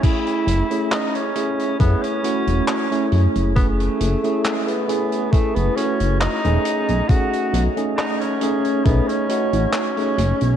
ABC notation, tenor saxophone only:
X:1
M:4/4
L:1/16
Q:"Swing 16ths" 1/4=68
K:F#dor
V:1 name="Tenor saxophone"
E4 D C3 B, C3 C3 z | B, A,3 G, B,3 A, B, C2 D4 | F3 z D C3 B, C3 C4 |]